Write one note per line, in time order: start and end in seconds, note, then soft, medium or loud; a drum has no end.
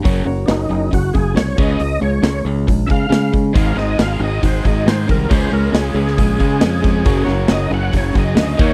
0.03 0.25 F#1 loud
0.03 0.24 F#2 medium
0.03 0.25 C#3 medium
0.03 0.25 F#3 loud
0.03 0.22 F#4 medium
0.03 0.22 A#4 medium
0.03 0.22 C#5 loud
0.03 kick loud
0.03 open hi-hat medium
0.25 0.47 F#1 medium
0.25 0.46 F#2 medium
0.25 0.46 C#3 medium
0.25 0.96 F#4 medium
0.25 0.96 A#4 medium
0.25 0.97 C#5 medium
0.46 0.69 F#1 medium
0.46 0.68 F#2 medium
0.46 0.68 C#3 medium
0.46 0.48 D4 medium
0.46 snare loud
0.46 open hi-hat medium
0.51 0.92 D#4 medium
0.69 0.91 F#1 loud
0.69 0.89 F#2 medium
0.69 0.90 C#3 medium
0.91 1.13 F#1 medium
0.91 1.11 F#2 medium
0.91 1.11 C#3 medium
0.91 1.14 F#4 medium
0.91 kick medium
0.91 open hi-hat medium
1.13 1.35 F#1 medium
1.13 1.34 F#2 medium
1.13 1.34 C#3 medium
1.13 1.35 G#4 medium
1.13 kick medium
1.35 1.56 C2 medium
1.35 1.55 F#2 medium
1.35 1.56 C#3 medium
1.35 1.57 C#5 medium
1.35 snare loud
1.35 open hi-hat medium
1.56 1.79 C#2 medium
1.56 1.78 C#3 medium
1.56 1.79 G#3 medium
1.56 1.79 C#4 loud
1.56 1.92 F4 medium
1.56 1.92 G#4 medium
1.56 1.92 C#5 medium
1.56 2.00 D#5 medium
1.56 kick loud
1.80 2.01 C#2 medium
1.80 2.00 C#3 medium
1.80 2.00 G#3 medium
1.80 open hi-hat medium
2.01 2.22 C#2 medium
2.01 2.21 C#3 medium
2.01 2.21 G#3 medium
2.01 2.72 F4 medium
2.01 2.71 G#4 medium
2.01 2.72 C#5 medium
2.01 2.45 C#5 medium
2.22 2.44 C#2 medium
2.22 2.43 C#3 medium
2.22 2.43 G#3 medium
2.22 snare loud
2.22 open hi-hat medium
2.45 2.66 C#2 medium
2.45 2.65 C#3 medium
2.45 2.66 G#3 medium
2.67 2.89 A#1 medium
2.67 2.86 C#3 medium
2.67 2.87 G#3 medium
2.67 kick medium
2.67 open hi-hat medium
2.86 3.08 C#3 medium
2.86 3.08 G#3 medium
2.86 2.89 E5 medium
2.86 kick medium
2.90 3.09 C#3 loud
2.90 3.33 F5 loud
3.10 3.30 C#3 medium
3.10 3.52 C#3 medium
3.10 3.30 G#3 medium
3.10 snare loud
3.10 open hi-hat medium
3.33 3.53 C#3 medium
3.33 3.53 G#3 medium
3.33 kick medium
3.54 3.76 G#1 medium
3.54 3.75 G#2 medium
3.54 3.75 D#3 medium
3.54 3.76 G#3 medium
3.54 3.72 D#4 medium
3.54 3.72 G#4 medium
3.54 3.72 C5 medium
3.54 3.77 F5 medium
3.54 kick loud
3.54 open hi-hat medium
3.76 3.96 G#2 medium
3.76 3.96 D#3 medium
3.76 3.99 G#3 medium
3.76 4.47 D#4 medium
3.76 4.47 G#4 medium
3.76 4.47 C5 medium
3.76 3.99 D#5 medium
3.76 snare soft
3.99 4.19 G#1 medium
3.99 4.18 G#2 medium
3.99 4.19 D#3 medium
3.99 4.21 G#3 loud
3.99 4.21 F5 medium
3.99 snare loud
3.99 open hi-hat medium
4.20 4.41 G#1 medium
4.20 4.40 G#2 medium
4.20 4.40 D#3 medium
4.20 4.42 G#3 medium
4.20 4.43 D#5 medium
4.43 4.64 G#1 medium
4.43 4.63 G#2 medium
4.43 4.63 D#3 medium
4.43 4.64 G#3 medium
4.43 4.66 C5 medium
4.43 kick medium
4.43 open hi-hat medium
4.65 4.85 G#1 medium
4.65 4.84 G#2 medium
4.65 4.85 D#3 medium
4.65 4.87 G#3 loud
4.65 4.87 D#5 medium
4.65 kick medium
4.86 5.07 G#2 medium
4.86 5.06 G#2 medium
4.86 5.06 D#3 medium
4.86 5.09 G#3 medium
4.86 5.08 C5 medium
4.86 snare loud
4.86 open hi-hat medium
5.07 5.30 C2 medium
5.07 5.27 G#2 medium
5.07 5.28 D#3 medium
5.07 5.29 G#3 loud
5.07 5.31 A#4 medium
5.07 kick medium
5.29 5.51 C#2 loud
5.29 5.50 C#3 medium
5.29 5.50 G#3 medium
5.29 5.51 C#4 loud
5.29 5.47 F4 medium
5.29 5.47 G#4 medium
5.29 5.53 C5 medium
5.29 5.47 C#5 medium
5.29 kick loud
5.29 open hi-hat medium
5.51 5.72 C#2 medium
5.51 5.71 C#3 medium
5.51 5.71 G#3 medium
5.51 5.75 C#4 medium
5.51 6.22 F4 medium
5.51 6.23 G#4 medium
5.51 5.74 A#4 medium
5.51 6.22 C#5 medium
5.72 5.94 C#2 medium
5.72 5.93 C#3 medium
5.72 5.93 G#3 medium
5.72 5.96 C#4 medium
5.72 5.95 G#4 medium
5.72 snare loud
5.72 open hi-hat medium
5.95 6.16 C#2 loud
5.95 6.15 C#3 medium
5.95 6.15 G#3 medium
5.95 6.19 C#4 medium
5.95 7.24 G#4 loud
6.07 snare soft
6.17 6.39 A#1 medium
6.17 6.37 C#3 medium
6.17 6.38 G#3 medium
6.17 6.40 C#4 loud
6.17 kick medium
6.17 open hi-hat medium
6.39 6.59 C#3 medium
6.39 6.61 C#3 loud
6.39 6.59 G#3 medium
6.39 6.61 C#4 loud
6.39 kick medium
6.60 7.03 F2 medium
6.60 6.81 C#3 medium
6.60 6.81 G#3 medium
6.60 6.82 C#4 medium
6.60 snare loud
6.60 open hi-hat medium
6.82 7.03 C#3 medium
6.82 7.03 G#3 medium
6.82 7.04 C#4 medium
6.82 kick medium
7.05 7.26 F#1 loud
7.05 7.26 F#2 medium
7.05 7.26 C#3 medium
7.05 7.26 F#3 medium
7.05 7.23 F#4 medium
7.05 7.23 A#4 medium
7.05 7.23 C#5 loud
7.05 kick loud
7.05 open hi-hat medium
7.25 7.48 F#1 medium
7.25 7.47 F#2 medium
7.25 7.47 C#3 medium
7.25 7.50 F#3 loud
7.25 7.96 F#4 medium
7.25 7.96 A#4 medium
7.25 7.96 C#5 medium
7.25 snare soft
7.48 7.70 F#1 loud
7.48 7.69 F#2 medium
7.48 7.69 C#3 medium
7.48 7.71 F#3 medium
7.48 7.72 D#5 medium
7.48 snare loud
7.48 open hi-hat medium
7.70 7.92 F#1 loud
7.70 7.91 F#2 medium
7.70 7.91 C#3 medium
7.70 7.93 F#3 medium
7.70 7.94 F#5 medium
7.93 8.14 F#1 medium
7.93 8.12 F#2 medium
7.93 8.13 C#3 medium
7.93 8.16 F#3 medium
7.93 8.16 C#5 loud
7.93 kick medium
7.93 open hi-hat medium
8.13 8.35 F#1 loud
8.13 8.34 F#2 medium
8.13 8.34 C#3 medium
8.13 8.37 F#3 loud
8.13 kick medium
8.19 8.59 D#5 medium
8.35 8.57 D2 medium
8.35 8.56 F#2 medium
8.35 8.56 C#3 medium
8.35 8.58 F#3 medium
8.35 snare loud
8.35 open hi-hat medium
8.58 8.74 D#2 medium
8.58 8.74 D#3 medium
8.58 8.74 A#3 medium
8.58 8.74 D#4 medium
8.58 8.74 G4 medium
8.58 8.74 A#4 medium
8.58 8.74 C#5 medium
8.58 8.74 D#5 medium
8.58 kick loud